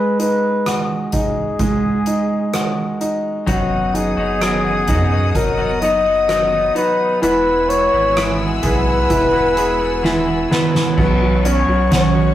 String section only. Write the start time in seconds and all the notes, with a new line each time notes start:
3.48 B3 D#5 F#5 D#6
7.23 B4 F#5 G#5 E6
10.97 B3 C#5 F#5 C#6